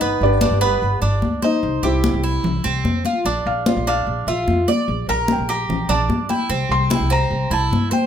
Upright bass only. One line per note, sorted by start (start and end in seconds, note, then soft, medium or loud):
0.01 0.20 G1 medium
0.21 0.50 G1 medium
0.51 0.80 G1 medium
0.82 1.01 G1 medium
1.02 1.21 G1 loud
1.22 1.42 D2 medium
1.63 1.82 C2 loud
1.83 2.12 C2 medium
2.14 2.43 C2 medium
2.44 2.63 C2 medium
2.64 2.83 C2 loud
2.84 3.04 F2 medium
3.25 3.44 A#1 medium
3.46 3.75 A#1 medium
3.77 4.05 A#1 medium
4.07 4.26 A#1 medium
4.27 4.46 A#1 loud
4.47 4.66 F2 medium
4.88 5.07 A#1 loud
5.08 5.37 A#1 medium
5.38 5.67 A#1 medium
5.69 5.88 A#1 medium
5.89 6.08 A#1 loud
6.09 6.28 G2 medium
6.50 6.69 C2 loud
6.69 6.99 C2 medium
7.00 7.29 C2 medium
7.31 7.50 C2 medium
7.50 7.70 C2 loud
7.71 7.91 G2 medium